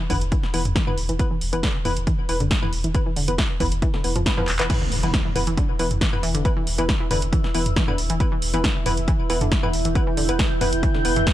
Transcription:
0.10 sub bass E1, synth arpeggio sound D3, synth stab E3 B3 B4, kick, mid tom, open hi-hat
0.21 sub bass E1, closed hi-hat
0.32 synth arpeggio sound E3, kick, closed hi-hat
0.43 snare
0.54 sub bass E1, synth arpeggio sound E3, synth stab E3 B3 B4, open hi-hat
0.65 sub bass E1, closed hi-hat, mid tom
0.76 synth arpeggio sound E3, kick, snare, closed hi-hat
0.87 synth arpeggio sound D3, synth stab E3 B3 B4, mid tom
0.98 sub bass E1, open hi-hat
1.09 sub bass E1, synth arpeggio sound E3, closed hi-hat
1.19 synth stab E3 B3 B4, kick, closed hi-hat
1.31 synth arpeggio sound E3
1.41 sub bass E1, open hi-hat
1.53 sub bass E1, synth arpeggio sound E3, synth stab E3 B3 B4, closed hi-hat
1.63 synth arpeggio sound D3, kick, snare, closed hi-hat
1.85 sub bass E1, synth arpeggio sound E3, synth stab E3 B3 B4, mid tom, open hi-hat
1.97 sub bass E1, closed hi-hat
2.07 synth arpeggio sound E3, kick, closed hi-hat
2.29 sub bass E1, synth stab E3 B3 B4, synth arpeggio sound E3, open hi-hat
2.40 sub bass E1, synth arpeggio sound D3, closed hi-hat, mid tom
2.51 kick, snare, closed hi-hat
2.62 synth stab E3 B3 B4, synth arpeggio sound E3, mid tom
2.73 sub bass E1, open hi-hat
2.84 sub bass E1, synth arpeggio sound E3, closed hi-hat
2.95 synth stab E3 B3 B4, kick, closed hi-hat
3.06 synth arpeggio sound E3
3.16 sub bass E1, synth arpeggio sound D3, open hi-hat
3.28 sub bass E1, synth stab E3 B3 B4, closed hi-hat
3.38 synth arpeggio sound E3, kick, snare, closed hi-hat
3.60 sub bass E1, synth stab E3 B3 B4, synth arpeggio sound E3, kick, mid tom, open hi-hat
3.72 sub bass E1, closed hi-hat
3.82 synth arpeggio sound E3, kick, closed hi-hat
3.94 synth arpeggio sound D3, snare
4.04 sub bass E1, synth stab E3 B3 B4, open hi-hat
4.16 sub bass E1, synth arpeggio sound F3, closed hi-hat, mid tom
4.26 synth stab E3 B3 B4, kick, snare, closed hi-hat
4.38 synth stab E3 B3 B4, synth arpeggio sound F3, mid tom
4.48 sub bass E1, clap, open hi-hat
4.59 sub bass E1, synth stab E3 B3 B4, synth arpeggio sound E3, clap, closed hi-hat
4.70 synth stab E3 B3 B4, synth arpeggio sound E3, ambient pad E4, kick, closed hi-hat, crash, impact
4.81 synth arpeggio sound D3
4.87 ambient pad E5
4.92 sub bass E1, open hi-hat
5.03 sub bass E1, synth arpeggio sound E3, synth stab E3 B3 B4, closed hi-hat
5.14 ambient pad B4, kick, snare, closed hi-hat
5.25 synth arpeggio sound E3
5.36 sub bass E1, synth stab E3 B3 B4, mid tom, open hi-hat
5.47 sub bass E1, synth arpeggio sound E3, closed hi-hat
5.57 synth arpeggio sound D3, kick, closed hi-hat
5.79 sub bass E1, synth arpeggio sound E3, synth stab E3 B3 B4, open hi-hat
5.91 sub bass E1, closed hi-hat, mid tom
5.99 synth arpeggio sound E3, ambient pad E6, kick, snare, closed hi-hat
6.13 synth stab E3 B3 B4, mid tom
6.23 sub bass E1, synth arpeggio sound E3, open hi-hat
6.35 sub bass E1, synth arpeggio sound D3, closed hi-hat
6.45 synth stab E3 B3 B4, kick, closed hi-hat
6.57 synth arpeggio sound E3
6.67 sub bass E1, open hi-hat
6.78 sub bass E1, synth arpeggio sound E3, synth stab E3 B3 B4, closed hi-hat
6.89 kick, snare, closed hi-hat
7.00 synth arpeggio sound E3
7.11 sub bass E1, synth arpeggio sound D3, synth stab E3 B3 B4, mid tom, open hi-hat
7.22 sub bass E1, closed hi-hat
7.33 synth arpeggio sound E3, kick, closed hi-hat
7.44 snare
7.54 sub bass E1, synth arpeggio sound E3, synth stab E3 B3 B4, open hi-hat
7.66 sub bass E1, closed hi-hat, mid tom
7.76 synth arpeggio sound E3, kick, snare, closed hi-hat
7.88 synth arpeggio sound D3, synth stab E3 B3 B4, mid tom
7.98 sub bass E1, open hi-hat
8.10 sub bass E1, synth arpeggio sound E3, closed hi-hat
8.20 synth stab E3 B3 B4, kick, closed hi-hat
8.32 synth arpeggio sound E3
8.42 sub bass E1, open hi-hat
8.54 sub bass E1, synth arpeggio sound E3, synth stab E3 B3 B4, closed hi-hat
8.64 synth arpeggio sound D3, kick, snare, closed hi-hat
8.86 sub bass E1, synth arpeggio sound E3, synth stab E3 B3 B4, mid tom, open hi-hat
8.97 sub bass E1, closed hi-hat
9.08 synth arpeggio sound E3, kick, closed hi-hat
9.30 sub bass E1, synth stab E3 B3 B4, synth arpeggio sound E3, open hi-hat
9.41 sub bass E1, synth arpeggio sound D3, closed hi-hat, mid tom
9.49 ambient pad G6, kick, snare, closed hi-hat
9.63 synth arpeggio sound E3, synth stab E3 B3 B4, mid tom
9.73 sub bass E1, open hi-hat
9.85 sub bass E1, synth arpeggio sound E3, closed hi-hat
9.95 synth stab E3 B3 B4, kick, closed hi-hat
10.07 synth arpeggio sound E3
10.17 sub bass E1, synth arpeggio sound D3, open hi-hat
10.29 sub bass E1, synth stab E3 B3 B4, closed hi-hat
10.39 synth arpeggio sound E3, kick, snare, closed hi-hat
10.61 sub bass E1, synth arpeggio sound E3, synth stab E3 B3 B4, mid tom, open hi-hat
10.73 sub bass E1, closed hi-hat
10.83 synth arpeggio sound E3, kick, closed hi-hat
10.94 synth arpeggio sound D3, snare
11.05 sub bass E1, synth stab E3 B3 B4, open hi-hat
11.16 sub bass E1, synth arpeggio sound E3, closed hi-hat, mid tom
11.27 kick, snare, closed hi-hat

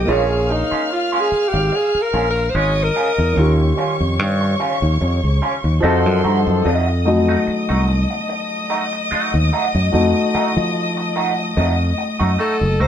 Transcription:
Already playing: alto saxophone G4
0.05 fingered electric bass A#1, clean electric guitar G#3 C#4 F4, grand piano A#3 F4, violin section F5 F6
0.09 grand piano G#4 C#5, alto saxophone G#4
0.31 muted clean electric guitar stroke
0.49 alto saxophone D#4, muted clean electric guitar stroke
0.71 clean electric guitar G#3 C#4 F4, muted fingered electric bass stroke
0.90 alto saxophone F4, muted clean electric guitar stroke
1.12 clean electric guitar G#3 C#4 F4
1.20 alto saxophone G#4
1.32 muted fingered electric bass stroke
1.48 alto saxophone G4
1.53 fingered electric bass G#1, muted clean electric guitar stroke
1.72 alto saxophone G#4, muted clean electric guitar stroke
1.95 muted fingered electric bass stroke
2.02 alto saxophone A#4
2.13 fingered electric bass A#1, clean electric guitar G#3 C#4 F4
2.30 alto saxophone A#4
2.36 muted clean electric guitar stroke
2.50 alto saxophone C5
2.55 fingered electric bass G#1, clean electric guitar G#3 C#4 F4, alto saxophone C#5, violin section D#5 D#6
2.77 muted clean electric guitar stroke
2.83 alto saxophone A#4
2.96 clean electric guitar G#3 C#4 F4
3.18 fingered electric bass E2, muted clean electric guitar stroke
3.33 fingered electric bass D#2, grand piano D#3 C#4, violin section C#5 C#6
3.38 grand piano F4 G4
3.77 clean electric guitar G3 C#4 F4
4.00 fingered electric bass F2
4.19 fingered electric bass G2
4.41 muted clean electric guitar stroke
4.60 clean electric guitar G3 C#4 F4
4.82 fingered electric bass D#2
5.01 fingered electric bass F2, muted clean electric guitar stroke
5.24 fingered electric bass C#2
5.42 clean electric guitar G3 C#4 F4
5.64 fingered electric bass D#2, muted clean electric guitar stroke
5.80 fingered electric bass F2, grand piano F3 D#4 F#4 A4, clean electric guitar A3 D#4 F#4, violin section C5 C6
6.06 fingered electric bass F#2
6.24 fingered electric bass G2, clean electric guitar A3 D#4 F#4
6.46 fingered electric bass F#2, muted clean electric guitar stroke
6.65 fingered electric bass F2, clean electric guitar A3 D#4 F#4, violin section D#5 D#6
6.87 muted clean electric guitar stroke
7.05 grand piano F#3 A3 D#4, muted clean electric guitar stroke
7.28 clean electric guitar A3 D#4 F#4
7.47 muted clean electric guitar stroke, muted fingered electric bass stroke
7.69 fingered electric bass C2, clean electric guitar A3 D#4 F#4
7.88 muted clean electric guitar stroke
8.10 muted clean electric guitar stroke
8.29 muted clean electric guitar stroke
8.70 clean electric guitar A3 D#4 F#4
8.93 muted clean electric guitar stroke
9.11 clean electric guitar A3 D#4 F#4, muted fingered electric bass stroke
9.34 fingered electric bass D#2, muted clean electric guitar stroke
9.53 clean electric guitar A3 D#4 F#4
9.75 fingered electric bass F#2, muted clean electric guitar stroke
9.92 fingered electric bass F2, grand piano A3 D#4 F#4
10.34 clean electric guitar A3 D#4 F#4, muted fingered electric bass stroke
10.57 fingered electric bass F3
10.97 muted clean electric guitar stroke
11.16 clean electric guitar A3 D#4 F#4
11.38 muted clean electric guitar stroke
11.57 fingered electric bass F2, clean electric guitar A3 D#4 F#4
11.98 muted clean electric guitar stroke
12.19 fingered electric bass F#2, clean electric guitar A3 D#4 F#4
12.39 clean electric guitar A3 D#4 F#4, alto saxophone A4
12.61 fingered electric bass F#1, muted clean electric guitar stroke
12.80 fingered electric bass C#2, clean electric guitar A3 D#4 F#4, alto saxophone C5

